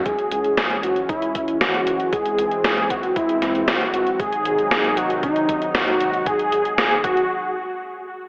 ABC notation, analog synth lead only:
X:1
M:4/4
L:1/8
Q:1/4=116
K:C#m
V:1 name="Analog synth lead"
G2 G F E2 F2 | G2 G F E2 F2 | G2 G F D2 F2 | G2 G F2 z3 |]